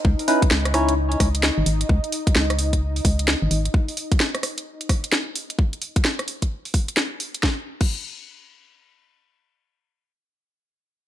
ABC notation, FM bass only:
X:1
M:4/4
L:1/16
Q:"Swing 16ths" 1/4=130
K:C#m
V:1 name="FM bass" clef=bass
C,, z3 C,,6 C,,3 G,,, G,,, z | C,, z3 C,,6 C,,3 G,,, G,,, z | z16 | z16 |
z16 | z16 |]